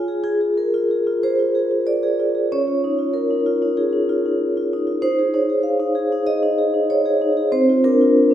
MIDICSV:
0, 0, Header, 1, 2, 480
1, 0, Start_track
1, 0, Key_signature, -4, "minor"
1, 0, Tempo, 657174
1, 893, Tempo, 634921
1, 1860, Time_signature, 4, 2, 24, 8
1, 3293, Tempo, 622407
1, 6335, End_track
2, 0, Start_track
2, 0, Title_t, "Vibraphone"
2, 0, Program_c, 0, 11
2, 0, Note_on_c, 0, 65, 57
2, 60, Note_on_c, 0, 68, 37
2, 65, Control_c, 0, 64, 127
2, 163, Note_off_c, 0, 65, 0
2, 164, Note_off_c, 0, 68, 0
2, 171, Note_on_c, 0, 65, 45
2, 173, Note_on_c, 0, 68, 61
2, 292, Note_off_c, 0, 68, 0
2, 301, Note_on_c, 0, 68, 40
2, 367, Note_off_c, 0, 65, 0
2, 419, Note_on_c, 0, 70, 49
2, 542, Note_on_c, 0, 65, 46
2, 657, Note_off_c, 0, 68, 0
2, 666, Note_on_c, 0, 68, 39
2, 731, Note_off_c, 0, 65, 0
2, 782, Note_on_c, 0, 65, 42
2, 851, Note_off_c, 0, 68, 0
2, 895, Note_off_c, 0, 70, 0
2, 901, Note_on_c, 0, 72, 68
2, 902, Note_on_c, 0, 68, 39
2, 969, Note_off_c, 0, 65, 0
2, 1020, Note_on_c, 0, 65, 44
2, 1091, Note_off_c, 0, 68, 0
2, 1141, Note_on_c, 0, 68, 39
2, 1209, Note_off_c, 0, 65, 0
2, 1264, Note_on_c, 0, 65, 37
2, 1330, Note_off_c, 0, 68, 0
2, 1379, Note_off_c, 0, 72, 0
2, 1380, Note_on_c, 0, 74, 58
2, 1504, Note_on_c, 0, 68, 38
2, 1619, Note_off_c, 0, 65, 0
2, 1628, Note_on_c, 0, 65, 35
2, 1695, Note_off_c, 0, 68, 0
2, 1744, Note_on_c, 0, 68, 35
2, 1817, Note_off_c, 0, 65, 0
2, 1863, Note_off_c, 0, 68, 0
2, 1863, Note_off_c, 0, 74, 0
2, 1872, Control_c, 0, 64, 0
2, 1874, Note_on_c, 0, 61, 50
2, 1876, Note_on_c, 0, 73, 65
2, 1973, Control_c, 0, 64, 127
2, 1990, Note_on_c, 0, 65, 38
2, 2118, Note_on_c, 0, 63, 44
2, 2176, Note_off_c, 0, 65, 0
2, 2226, Note_on_c, 0, 65, 37
2, 2298, Note_off_c, 0, 63, 0
2, 2339, Note_on_c, 0, 70, 53
2, 2344, Note_off_c, 0, 73, 0
2, 2468, Note_on_c, 0, 63, 42
2, 2577, Note_off_c, 0, 65, 0
2, 2586, Note_on_c, 0, 65, 45
2, 2649, Note_off_c, 0, 63, 0
2, 2708, Note_on_c, 0, 63, 39
2, 2770, Note_off_c, 0, 65, 0
2, 2789, Note_off_c, 0, 61, 0
2, 2812, Note_off_c, 0, 70, 0
2, 2821, Note_on_c, 0, 65, 46
2, 2821, Note_on_c, 0, 68, 50
2, 2892, Note_off_c, 0, 63, 0
2, 2937, Note_on_c, 0, 63, 44
2, 3010, Note_off_c, 0, 65, 0
2, 3063, Note_on_c, 0, 65, 43
2, 3129, Note_off_c, 0, 63, 0
2, 3187, Note_on_c, 0, 63, 33
2, 3252, Note_off_c, 0, 65, 0
2, 3428, Note_on_c, 0, 65, 42
2, 3541, Note_off_c, 0, 68, 0
2, 3543, Note_off_c, 0, 63, 0
2, 3552, Note_on_c, 0, 63, 43
2, 3614, Note_off_c, 0, 65, 0
2, 3658, Note_on_c, 0, 65, 39
2, 3735, Note_off_c, 0, 63, 0
2, 3774, Note_on_c, 0, 72, 76
2, 3775, Note_on_c, 0, 63, 54
2, 3777, Note_off_c, 0, 65, 0
2, 3790, Control_c, 0, 64, 0
2, 3900, Control_c, 0, 64, 127
2, 3902, Note_on_c, 0, 68, 42
2, 4014, Note_off_c, 0, 63, 0
2, 4015, Note_off_c, 0, 72, 0
2, 4019, Note_on_c, 0, 73, 53
2, 4024, Note_on_c, 0, 63, 44
2, 4092, Note_off_c, 0, 68, 0
2, 4141, Note_on_c, 0, 68, 41
2, 4214, Note_off_c, 0, 63, 0
2, 4246, Note_on_c, 0, 77, 52
2, 4260, Note_off_c, 0, 73, 0
2, 4372, Note_on_c, 0, 63, 48
2, 4482, Note_off_c, 0, 68, 0
2, 4492, Note_on_c, 0, 68, 45
2, 4571, Note_off_c, 0, 63, 0
2, 4625, Note_on_c, 0, 63, 45
2, 4692, Note_off_c, 0, 68, 0
2, 4734, Note_on_c, 0, 68, 42
2, 4734, Note_on_c, 0, 75, 65
2, 4740, Note_off_c, 0, 77, 0
2, 4818, Note_off_c, 0, 63, 0
2, 4859, Note_on_c, 0, 63, 51
2, 4933, Note_off_c, 0, 68, 0
2, 4981, Note_on_c, 0, 68, 41
2, 5054, Note_off_c, 0, 63, 0
2, 5100, Note_on_c, 0, 63, 36
2, 5175, Note_off_c, 0, 68, 0
2, 5220, Note_off_c, 0, 75, 0
2, 5223, Note_on_c, 0, 73, 71
2, 5343, Note_on_c, 0, 68, 44
2, 5457, Note_off_c, 0, 63, 0
2, 5466, Note_on_c, 0, 63, 47
2, 5535, Note_off_c, 0, 68, 0
2, 5586, Note_on_c, 0, 68, 45
2, 5656, Note_off_c, 0, 63, 0
2, 5700, Note_on_c, 0, 60, 58
2, 5702, Note_off_c, 0, 73, 0
2, 5702, Note_on_c, 0, 72, 72
2, 5704, Note_off_c, 0, 68, 0
2, 5715, Control_c, 0, 64, 0
2, 5836, Note_on_c, 0, 65, 44
2, 5848, Control_c, 0, 64, 127
2, 5940, Note_off_c, 0, 72, 0
2, 5948, Note_on_c, 0, 62, 50
2, 5951, Note_on_c, 0, 70, 69
2, 6019, Note_off_c, 0, 65, 0
2, 6081, Note_on_c, 0, 65, 47
2, 6134, Note_off_c, 0, 62, 0
2, 6307, Note_on_c, 0, 62, 47
2, 6335, Note_off_c, 0, 60, 0
2, 6335, Note_off_c, 0, 62, 0
2, 6335, Note_off_c, 0, 65, 0
2, 6335, Note_off_c, 0, 70, 0
2, 6335, End_track
0, 0, End_of_file